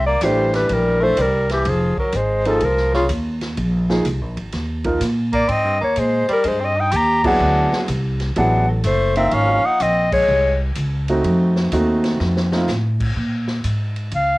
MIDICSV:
0, 0, Header, 1, 7, 480
1, 0, Start_track
1, 0, Tempo, 480000
1, 1654, Time_signature, 4, 2, 24, 8
1, 14380, End_track
2, 0, Start_track
2, 0, Title_t, "Clarinet"
2, 0, Program_c, 0, 71
2, 64, Note_on_c, 0, 74, 82
2, 243, Note_on_c, 0, 72, 82
2, 258, Note_off_c, 0, 74, 0
2, 550, Note_off_c, 0, 72, 0
2, 558, Note_on_c, 0, 71, 77
2, 736, Note_on_c, 0, 70, 86
2, 750, Note_off_c, 0, 71, 0
2, 1034, Note_on_c, 0, 72, 103
2, 1049, Note_off_c, 0, 70, 0
2, 1215, Note_on_c, 0, 70, 88
2, 1230, Note_off_c, 0, 72, 0
2, 1515, Note_off_c, 0, 70, 0
2, 1530, Note_on_c, 0, 67, 80
2, 1692, Note_on_c, 0, 68, 71
2, 1707, Note_off_c, 0, 67, 0
2, 1991, Note_off_c, 0, 68, 0
2, 1997, Note_on_c, 0, 70, 78
2, 2164, Note_on_c, 0, 72, 89
2, 2179, Note_off_c, 0, 70, 0
2, 2472, Note_on_c, 0, 69, 83
2, 2486, Note_off_c, 0, 72, 0
2, 2644, Note_on_c, 0, 70, 99
2, 2660, Note_off_c, 0, 69, 0
2, 2949, Note_off_c, 0, 70, 0
2, 2956, Note_on_c, 0, 65, 78
2, 3044, Note_off_c, 0, 65, 0
2, 5351, Note_on_c, 0, 74, 88
2, 5517, Note_on_c, 0, 75, 79
2, 5532, Note_off_c, 0, 74, 0
2, 5823, Note_off_c, 0, 75, 0
2, 5840, Note_on_c, 0, 73, 80
2, 5994, Note_on_c, 0, 72, 82
2, 6009, Note_off_c, 0, 73, 0
2, 6301, Note_off_c, 0, 72, 0
2, 6327, Note_on_c, 0, 70, 93
2, 6480, Note_on_c, 0, 72, 81
2, 6495, Note_off_c, 0, 70, 0
2, 6647, Note_on_c, 0, 75, 78
2, 6662, Note_off_c, 0, 72, 0
2, 6800, Note_on_c, 0, 79, 86
2, 6815, Note_off_c, 0, 75, 0
2, 6960, Note_on_c, 0, 82, 104
2, 6975, Note_off_c, 0, 79, 0
2, 7264, Note_off_c, 0, 82, 0
2, 7268, Note_on_c, 0, 78, 93
2, 7856, Note_off_c, 0, 78, 0
2, 8390, Note_on_c, 0, 78, 85
2, 8677, Note_off_c, 0, 78, 0
2, 8704, Note_on_c, 0, 69, 49
2, 8864, Note_off_c, 0, 69, 0
2, 8868, Note_on_c, 0, 72, 95
2, 9167, Note_off_c, 0, 72, 0
2, 9173, Note_on_c, 0, 76, 87
2, 9343, Note_on_c, 0, 77, 86
2, 9358, Note_off_c, 0, 76, 0
2, 9661, Note_on_c, 0, 78, 85
2, 9676, Note_off_c, 0, 77, 0
2, 9825, Note_on_c, 0, 75, 88
2, 9840, Note_off_c, 0, 78, 0
2, 10126, Note_off_c, 0, 75, 0
2, 10132, Note_on_c, 0, 73, 99
2, 10575, Note_off_c, 0, 73, 0
2, 14156, Note_on_c, 0, 77, 88
2, 14380, Note_off_c, 0, 77, 0
2, 14380, End_track
3, 0, Start_track
3, 0, Title_t, "Upright piano"
3, 0, Program_c, 1, 0
3, 228, Note_on_c, 1, 52, 70
3, 231, Note_on_c, 1, 57, 67
3, 231, Note_on_c, 1, 62, 67
3, 236, Note_on_c, 1, 67, 80
3, 958, Note_off_c, 1, 52, 0
3, 959, Note_off_c, 1, 62, 0
3, 960, Note_off_c, 1, 57, 0
3, 962, Note_off_c, 1, 67, 0
3, 1021, Note_on_c, 1, 52, 53
3, 1021, Note_on_c, 1, 57, 52
3, 1023, Note_on_c, 1, 62, 51
3, 1024, Note_on_c, 1, 69, 70
3, 1161, Note_off_c, 1, 57, 0
3, 1162, Note_off_c, 1, 52, 0
3, 1162, Note_off_c, 1, 62, 0
3, 1163, Note_off_c, 1, 69, 0
3, 2461, Note_on_c, 1, 53, 63
3, 2463, Note_on_c, 1, 63, 62
3, 2465, Note_on_c, 1, 58, 50
3, 2474, Note_on_c, 1, 68, 64
3, 2601, Note_off_c, 1, 53, 0
3, 2602, Note_off_c, 1, 63, 0
3, 2603, Note_off_c, 1, 58, 0
3, 2607, Note_off_c, 1, 68, 0
3, 3896, Note_on_c, 1, 53, 67
3, 3898, Note_on_c, 1, 68, 81
3, 3901, Note_on_c, 1, 58, 59
3, 3904, Note_on_c, 1, 63, 68
3, 4037, Note_off_c, 1, 53, 0
3, 4038, Note_off_c, 1, 68, 0
3, 4040, Note_off_c, 1, 58, 0
3, 4041, Note_off_c, 1, 63, 0
3, 4846, Note_on_c, 1, 53, 73
3, 4850, Note_on_c, 1, 58, 55
3, 4851, Note_on_c, 1, 63, 61
3, 4856, Note_on_c, 1, 70, 76
3, 4991, Note_off_c, 1, 53, 0
3, 4993, Note_off_c, 1, 58, 0
3, 4994, Note_off_c, 1, 63, 0
3, 4996, Note_off_c, 1, 70, 0
3, 7247, Note_on_c, 1, 54, 80
3, 7247, Note_on_c, 1, 59, 69
3, 7251, Note_on_c, 1, 64, 67
3, 7252, Note_on_c, 1, 68, 91
3, 7854, Note_off_c, 1, 54, 0
3, 7854, Note_off_c, 1, 59, 0
3, 7855, Note_off_c, 1, 64, 0
3, 7856, Note_off_c, 1, 68, 0
3, 8363, Note_on_c, 1, 54, 67
3, 8368, Note_on_c, 1, 68, 71
3, 8370, Note_on_c, 1, 59, 67
3, 8371, Note_on_c, 1, 64, 60
3, 8653, Note_off_c, 1, 54, 0
3, 8655, Note_off_c, 1, 68, 0
3, 8656, Note_off_c, 1, 59, 0
3, 8656, Note_off_c, 1, 64, 0
3, 9168, Note_on_c, 1, 53, 74
3, 9169, Note_on_c, 1, 58, 67
3, 9173, Note_on_c, 1, 63, 69
3, 9174, Note_on_c, 1, 65, 76
3, 9774, Note_off_c, 1, 53, 0
3, 9774, Note_off_c, 1, 58, 0
3, 9776, Note_off_c, 1, 63, 0
3, 9776, Note_off_c, 1, 65, 0
3, 11093, Note_on_c, 1, 57, 76
3, 11095, Note_on_c, 1, 60, 69
3, 11095, Note_on_c, 1, 63, 69
3, 11099, Note_on_c, 1, 66, 80
3, 11697, Note_off_c, 1, 57, 0
3, 11698, Note_off_c, 1, 60, 0
3, 11698, Note_off_c, 1, 63, 0
3, 11700, Note_off_c, 1, 66, 0
3, 11730, Note_on_c, 1, 57, 71
3, 11732, Note_on_c, 1, 60, 61
3, 11733, Note_on_c, 1, 63, 71
3, 11733, Note_on_c, 1, 66, 78
3, 12465, Note_off_c, 1, 57, 0
3, 12466, Note_off_c, 1, 60, 0
3, 12466, Note_off_c, 1, 63, 0
3, 12466, Note_off_c, 1, 66, 0
3, 12532, Note_on_c, 1, 57, 63
3, 12532, Note_on_c, 1, 63, 60
3, 12534, Note_on_c, 1, 60, 63
3, 12538, Note_on_c, 1, 65, 72
3, 12672, Note_off_c, 1, 57, 0
3, 12673, Note_off_c, 1, 63, 0
3, 12674, Note_off_c, 1, 60, 0
3, 12676, Note_off_c, 1, 65, 0
3, 14380, End_track
4, 0, Start_track
4, 0, Title_t, "Tenor saxophone"
4, 0, Program_c, 2, 66
4, 71, Note_on_c, 2, 58, 76
4, 217, Note_on_c, 2, 55, 66
4, 232, Note_off_c, 2, 58, 0
4, 522, Note_off_c, 2, 55, 0
4, 528, Note_on_c, 2, 55, 66
4, 707, Note_off_c, 2, 55, 0
4, 707, Note_on_c, 2, 55, 71
4, 1001, Note_on_c, 2, 57, 87
4, 1016, Note_off_c, 2, 55, 0
4, 1179, Note_on_c, 2, 55, 76
4, 1194, Note_off_c, 2, 57, 0
4, 1497, Note_off_c, 2, 55, 0
4, 1508, Note_on_c, 2, 52, 70
4, 1671, Note_on_c, 2, 53, 63
4, 1686, Note_off_c, 2, 52, 0
4, 1979, Note_off_c, 2, 53, 0
4, 1985, Note_on_c, 2, 54, 65
4, 2151, Note_on_c, 2, 56, 74
4, 2166, Note_off_c, 2, 54, 0
4, 2463, Note_on_c, 2, 53, 77
4, 2478, Note_off_c, 2, 56, 0
4, 2632, Note_off_c, 2, 53, 0
4, 2632, Note_on_c, 2, 53, 71
4, 2939, Note_off_c, 2, 53, 0
4, 2945, Note_on_c, 2, 49, 82
4, 3088, Note_off_c, 2, 49, 0
4, 5328, Note_on_c, 2, 58, 84
4, 5488, Note_on_c, 2, 60, 80
4, 5503, Note_off_c, 2, 58, 0
4, 5805, Note_off_c, 2, 60, 0
4, 5811, Note_on_c, 2, 58, 68
4, 5978, Note_on_c, 2, 56, 67
4, 5993, Note_off_c, 2, 58, 0
4, 6281, Note_off_c, 2, 56, 0
4, 6287, Note_on_c, 2, 55, 79
4, 6446, Note_on_c, 2, 56, 67
4, 6461, Note_off_c, 2, 55, 0
4, 6606, Note_on_c, 2, 60, 63
4, 6621, Note_off_c, 2, 56, 0
4, 6766, Note_on_c, 2, 63, 76
4, 6781, Note_off_c, 2, 60, 0
4, 6921, Note_on_c, 2, 67, 91
4, 6936, Note_off_c, 2, 63, 0
4, 7232, Note_off_c, 2, 67, 0
4, 7238, Note_on_c, 2, 62, 83
4, 7841, Note_off_c, 2, 62, 0
4, 8374, Note_on_c, 2, 62, 67
4, 8668, Note_off_c, 2, 62, 0
4, 8686, Note_on_c, 2, 54, 42
4, 8843, Note_on_c, 2, 57, 79
4, 8846, Note_off_c, 2, 54, 0
4, 9164, Note_off_c, 2, 57, 0
4, 9168, Note_on_c, 2, 60, 80
4, 9333, Note_on_c, 2, 61, 77
4, 9348, Note_off_c, 2, 60, 0
4, 9650, Note_on_c, 2, 63, 77
4, 9665, Note_off_c, 2, 61, 0
4, 9813, Note_on_c, 2, 60, 72
4, 9828, Note_off_c, 2, 63, 0
4, 10114, Note_off_c, 2, 60, 0
4, 10120, Note_on_c, 2, 56, 77
4, 10569, Note_off_c, 2, 56, 0
4, 14380, End_track
5, 0, Start_track
5, 0, Title_t, "Upright bass"
5, 0, Program_c, 3, 32
5, 0, Note_on_c, 3, 36, 81
5, 201, Note_off_c, 3, 36, 0
5, 215, Note_on_c, 3, 33, 84
5, 680, Note_off_c, 3, 33, 0
5, 697, Note_on_c, 3, 34, 84
5, 1161, Note_off_c, 3, 34, 0
5, 1175, Note_on_c, 3, 36, 93
5, 1640, Note_off_c, 3, 36, 0
5, 1656, Note_on_c, 3, 29, 94
5, 1953, Note_off_c, 3, 29, 0
5, 2130, Note_on_c, 3, 32, 81
5, 2597, Note_off_c, 3, 32, 0
5, 2612, Note_on_c, 3, 36, 85
5, 3078, Note_off_c, 3, 36, 0
5, 3091, Note_on_c, 3, 39, 93
5, 3557, Note_off_c, 3, 39, 0
5, 3573, Note_on_c, 3, 34, 91
5, 4037, Note_off_c, 3, 34, 0
5, 4053, Note_on_c, 3, 36, 86
5, 4211, Note_off_c, 3, 36, 0
5, 4211, Note_on_c, 3, 34, 55
5, 4362, Note_off_c, 3, 34, 0
5, 4368, Note_on_c, 3, 32, 69
5, 4518, Note_off_c, 3, 32, 0
5, 4528, Note_on_c, 3, 39, 81
5, 4994, Note_off_c, 3, 39, 0
5, 5008, Note_on_c, 3, 46, 87
5, 5473, Note_off_c, 3, 46, 0
5, 5487, Note_on_c, 3, 44, 83
5, 5644, Note_off_c, 3, 44, 0
5, 5644, Note_on_c, 3, 43, 57
5, 5800, Note_off_c, 3, 43, 0
5, 5806, Note_on_c, 3, 39, 57
5, 5955, Note_off_c, 3, 39, 0
5, 5968, Note_on_c, 3, 46, 81
5, 6266, Note_off_c, 3, 46, 0
5, 6446, Note_on_c, 3, 43, 91
5, 6912, Note_off_c, 3, 43, 0
5, 6925, Note_on_c, 3, 39, 99
5, 7391, Note_off_c, 3, 39, 0
5, 7402, Note_on_c, 3, 38, 98
5, 7702, Note_off_c, 3, 38, 0
5, 7882, Note_on_c, 3, 36, 96
5, 8349, Note_off_c, 3, 36, 0
5, 8363, Note_on_c, 3, 33, 91
5, 8829, Note_off_c, 3, 33, 0
5, 8841, Note_on_c, 3, 30, 101
5, 9308, Note_off_c, 3, 30, 0
5, 9322, Note_on_c, 3, 32, 90
5, 9621, Note_off_c, 3, 32, 0
5, 9802, Note_on_c, 3, 34, 86
5, 10269, Note_off_c, 3, 34, 0
5, 10284, Note_on_c, 3, 36, 80
5, 10750, Note_off_c, 3, 36, 0
5, 10761, Note_on_c, 3, 37, 84
5, 11228, Note_off_c, 3, 37, 0
5, 11242, Note_on_c, 3, 41, 93
5, 11709, Note_off_c, 3, 41, 0
5, 11721, Note_on_c, 3, 39, 101
5, 12189, Note_off_c, 3, 39, 0
5, 12200, Note_on_c, 3, 41, 89
5, 12669, Note_off_c, 3, 41, 0
5, 12679, Note_on_c, 3, 45, 95
5, 13149, Note_off_c, 3, 45, 0
5, 13161, Note_on_c, 3, 46, 81
5, 13631, Note_off_c, 3, 46, 0
5, 13642, Note_on_c, 3, 44, 80
5, 14112, Note_off_c, 3, 44, 0
5, 14120, Note_on_c, 3, 37, 73
5, 14380, Note_off_c, 3, 37, 0
5, 14380, End_track
6, 0, Start_track
6, 0, Title_t, "Muted upright bass strokes"
6, 1974, Note_on_c, 9, 29, 39
6, 2074, Note_off_c, 9, 29, 0
6, 6284, Note_on_c, 9, 29, 39
6, 6384, Note_off_c, 9, 29, 0
6, 14380, End_track
7, 0, Start_track
7, 0, Title_t, "Drums"
7, 209, Note_on_c, 9, 44, 60
7, 209, Note_on_c, 9, 51, 70
7, 216, Note_on_c, 9, 36, 23
7, 309, Note_off_c, 9, 44, 0
7, 309, Note_off_c, 9, 51, 0
7, 316, Note_off_c, 9, 36, 0
7, 536, Note_on_c, 9, 51, 46
7, 541, Note_on_c, 9, 38, 45
7, 636, Note_off_c, 9, 51, 0
7, 641, Note_off_c, 9, 38, 0
7, 692, Note_on_c, 9, 51, 57
7, 698, Note_on_c, 9, 36, 20
7, 792, Note_off_c, 9, 51, 0
7, 798, Note_off_c, 9, 36, 0
7, 1168, Note_on_c, 9, 44, 57
7, 1168, Note_on_c, 9, 51, 73
7, 1176, Note_on_c, 9, 36, 20
7, 1268, Note_off_c, 9, 44, 0
7, 1268, Note_off_c, 9, 51, 0
7, 1276, Note_off_c, 9, 36, 0
7, 1494, Note_on_c, 9, 51, 47
7, 1498, Note_on_c, 9, 38, 47
7, 1594, Note_off_c, 9, 51, 0
7, 1598, Note_off_c, 9, 38, 0
7, 1649, Note_on_c, 9, 51, 61
7, 1656, Note_on_c, 9, 36, 22
7, 1749, Note_off_c, 9, 51, 0
7, 1756, Note_off_c, 9, 36, 0
7, 1975, Note_on_c, 9, 36, 68
7, 2075, Note_off_c, 9, 36, 0
7, 2124, Note_on_c, 9, 44, 48
7, 2124, Note_on_c, 9, 51, 66
7, 2224, Note_off_c, 9, 44, 0
7, 2224, Note_off_c, 9, 51, 0
7, 2453, Note_on_c, 9, 51, 46
7, 2553, Note_off_c, 9, 51, 0
7, 2606, Note_on_c, 9, 51, 59
7, 2614, Note_on_c, 9, 36, 19
7, 2706, Note_off_c, 9, 51, 0
7, 2714, Note_off_c, 9, 36, 0
7, 2773, Note_on_c, 9, 38, 32
7, 2873, Note_off_c, 9, 38, 0
7, 2936, Note_on_c, 9, 38, 45
7, 3036, Note_off_c, 9, 38, 0
7, 3089, Note_on_c, 9, 44, 50
7, 3089, Note_on_c, 9, 51, 75
7, 3094, Note_on_c, 9, 36, 20
7, 3189, Note_off_c, 9, 44, 0
7, 3189, Note_off_c, 9, 51, 0
7, 3194, Note_off_c, 9, 36, 0
7, 3411, Note_on_c, 9, 51, 44
7, 3416, Note_on_c, 9, 38, 58
7, 3511, Note_off_c, 9, 51, 0
7, 3516, Note_off_c, 9, 38, 0
7, 3571, Note_on_c, 9, 51, 63
7, 3575, Note_on_c, 9, 36, 22
7, 3671, Note_off_c, 9, 51, 0
7, 3675, Note_off_c, 9, 36, 0
7, 3897, Note_on_c, 9, 38, 63
7, 3997, Note_off_c, 9, 38, 0
7, 4048, Note_on_c, 9, 44, 52
7, 4048, Note_on_c, 9, 51, 61
7, 4052, Note_on_c, 9, 36, 23
7, 4148, Note_off_c, 9, 44, 0
7, 4148, Note_off_c, 9, 51, 0
7, 4152, Note_off_c, 9, 36, 0
7, 4370, Note_on_c, 9, 51, 43
7, 4470, Note_off_c, 9, 51, 0
7, 4524, Note_on_c, 9, 51, 51
7, 4529, Note_on_c, 9, 38, 40
7, 4530, Note_on_c, 9, 36, 24
7, 4624, Note_off_c, 9, 51, 0
7, 4629, Note_off_c, 9, 38, 0
7, 4630, Note_off_c, 9, 36, 0
7, 4844, Note_on_c, 9, 51, 51
7, 4850, Note_on_c, 9, 36, 60
7, 4943, Note_off_c, 9, 51, 0
7, 4950, Note_off_c, 9, 36, 0
7, 5008, Note_on_c, 9, 44, 60
7, 5008, Note_on_c, 9, 51, 71
7, 5012, Note_on_c, 9, 38, 38
7, 5108, Note_off_c, 9, 44, 0
7, 5108, Note_off_c, 9, 51, 0
7, 5112, Note_off_c, 9, 38, 0
7, 5328, Note_on_c, 9, 51, 52
7, 5331, Note_on_c, 9, 36, 58
7, 5428, Note_off_c, 9, 51, 0
7, 5431, Note_off_c, 9, 36, 0
7, 5486, Note_on_c, 9, 51, 57
7, 5489, Note_on_c, 9, 36, 19
7, 5586, Note_off_c, 9, 51, 0
7, 5589, Note_off_c, 9, 36, 0
7, 5959, Note_on_c, 9, 44, 61
7, 5959, Note_on_c, 9, 51, 61
7, 5967, Note_on_c, 9, 36, 23
7, 6059, Note_off_c, 9, 44, 0
7, 6059, Note_off_c, 9, 51, 0
7, 6067, Note_off_c, 9, 36, 0
7, 6286, Note_on_c, 9, 51, 51
7, 6386, Note_off_c, 9, 51, 0
7, 6438, Note_on_c, 9, 51, 64
7, 6445, Note_on_c, 9, 36, 23
7, 6538, Note_off_c, 9, 51, 0
7, 6545, Note_off_c, 9, 36, 0
7, 6916, Note_on_c, 9, 44, 48
7, 6916, Note_on_c, 9, 51, 67
7, 6924, Note_on_c, 9, 36, 17
7, 7016, Note_off_c, 9, 44, 0
7, 7016, Note_off_c, 9, 51, 0
7, 7024, Note_off_c, 9, 36, 0
7, 7243, Note_on_c, 9, 36, 90
7, 7243, Note_on_c, 9, 49, 80
7, 7343, Note_off_c, 9, 36, 0
7, 7343, Note_off_c, 9, 49, 0
7, 7727, Note_on_c, 9, 38, 73
7, 7827, Note_off_c, 9, 38, 0
7, 7880, Note_on_c, 9, 44, 52
7, 7880, Note_on_c, 9, 51, 69
7, 7884, Note_on_c, 9, 36, 23
7, 7980, Note_off_c, 9, 44, 0
7, 7980, Note_off_c, 9, 51, 0
7, 7984, Note_off_c, 9, 36, 0
7, 8198, Note_on_c, 9, 51, 46
7, 8202, Note_on_c, 9, 38, 39
7, 8298, Note_off_c, 9, 51, 0
7, 8302, Note_off_c, 9, 38, 0
7, 8358, Note_on_c, 9, 51, 60
7, 8364, Note_on_c, 9, 36, 21
7, 8458, Note_off_c, 9, 51, 0
7, 8464, Note_off_c, 9, 36, 0
7, 8836, Note_on_c, 9, 44, 53
7, 8836, Note_on_c, 9, 51, 70
7, 8842, Note_on_c, 9, 36, 18
7, 8936, Note_off_c, 9, 44, 0
7, 8936, Note_off_c, 9, 51, 0
7, 8942, Note_off_c, 9, 36, 0
7, 9156, Note_on_c, 9, 51, 48
7, 9256, Note_off_c, 9, 51, 0
7, 9312, Note_on_c, 9, 51, 58
7, 9321, Note_on_c, 9, 36, 22
7, 9412, Note_off_c, 9, 51, 0
7, 9421, Note_off_c, 9, 36, 0
7, 9798, Note_on_c, 9, 44, 51
7, 9798, Note_on_c, 9, 51, 68
7, 9803, Note_on_c, 9, 36, 20
7, 9898, Note_off_c, 9, 44, 0
7, 9898, Note_off_c, 9, 51, 0
7, 9903, Note_off_c, 9, 36, 0
7, 10121, Note_on_c, 9, 36, 81
7, 10122, Note_on_c, 9, 49, 78
7, 10221, Note_off_c, 9, 36, 0
7, 10222, Note_off_c, 9, 49, 0
7, 10753, Note_on_c, 9, 44, 57
7, 10753, Note_on_c, 9, 51, 67
7, 10761, Note_on_c, 9, 36, 23
7, 10853, Note_off_c, 9, 44, 0
7, 10853, Note_off_c, 9, 51, 0
7, 10861, Note_off_c, 9, 36, 0
7, 11080, Note_on_c, 9, 51, 49
7, 11180, Note_off_c, 9, 51, 0
7, 11243, Note_on_c, 9, 51, 58
7, 11244, Note_on_c, 9, 36, 23
7, 11343, Note_off_c, 9, 51, 0
7, 11344, Note_off_c, 9, 36, 0
7, 11564, Note_on_c, 9, 38, 54
7, 11664, Note_off_c, 9, 38, 0
7, 11718, Note_on_c, 9, 44, 59
7, 11718, Note_on_c, 9, 51, 69
7, 11723, Note_on_c, 9, 36, 24
7, 11818, Note_off_c, 9, 44, 0
7, 11818, Note_off_c, 9, 51, 0
7, 11823, Note_off_c, 9, 36, 0
7, 12038, Note_on_c, 9, 51, 49
7, 12043, Note_on_c, 9, 38, 57
7, 12138, Note_off_c, 9, 51, 0
7, 12143, Note_off_c, 9, 38, 0
7, 12201, Note_on_c, 9, 38, 53
7, 12301, Note_off_c, 9, 38, 0
7, 12367, Note_on_c, 9, 38, 66
7, 12467, Note_off_c, 9, 38, 0
7, 12523, Note_on_c, 9, 38, 91
7, 12623, Note_off_c, 9, 38, 0
7, 12679, Note_on_c, 9, 44, 64
7, 12684, Note_on_c, 9, 38, 58
7, 12779, Note_off_c, 9, 44, 0
7, 12784, Note_off_c, 9, 38, 0
7, 13004, Note_on_c, 9, 36, 78
7, 13004, Note_on_c, 9, 49, 82
7, 13104, Note_off_c, 9, 36, 0
7, 13104, Note_off_c, 9, 49, 0
7, 13162, Note_on_c, 9, 36, 17
7, 13262, Note_off_c, 9, 36, 0
7, 13476, Note_on_c, 9, 38, 52
7, 13576, Note_off_c, 9, 38, 0
7, 13639, Note_on_c, 9, 44, 53
7, 13639, Note_on_c, 9, 51, 62
7, 13644, Note_on_c, 9, 36, 26
7, 13739, Note_off_c, 9, 44, 0
7, 13739, Note_off_c, 9, 51, 0
7, 13744, Note_off_c, 9, 36, 0
7, 13960, Note_on_c, 9, 51, 41
7, 14060, Note_off_c, 9, 51, 0
7, 14114, Note_on_c, 9, 51, 61
7, 14121, Note_on_c, 9, 36, 18
7, 14214, Note_off_c, 9, 51, 0
7, 14221, Note_off_c, 9, 36, 0
7, 14380, End_track
0, 0, End_of_file